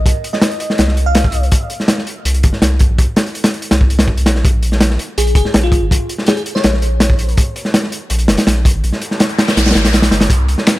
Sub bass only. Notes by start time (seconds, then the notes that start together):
0.06 C2
0.79 C2
2.25 C2
2.44 G1
2.62 C2
2.89 A#1
2.99 C2
3.71 C2
4.26 A#1
5.18 A#1
5.35 F1
5.55 A#1
5.82 G#1
5.91 A#1
6.64 A#1
8.11 A#1
8.29 F1
8.47 A#1
8.75 G#1
8.84 A#1
9.57 A#1
9.75 G#1
9.85 A#1
10.12 G1
10.30 C2